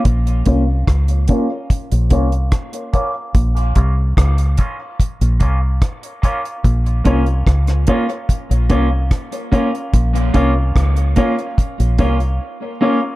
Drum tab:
HH |xxx-xxx-xxxxxxx-|xxx-xxx-xxx-xxxx|xxxxxxxxxxx-xxxx|xxx-xxxxxxxx----|
SD |----r-------r---|----r-------r---|----rr------r---|----r-----------|
BD |o-o-o-o-o-o-o-o-|o-o-o-o-o-o-o-o-|o-o-o-o-o-o-o-o-|o-o-o-o-o-o-----|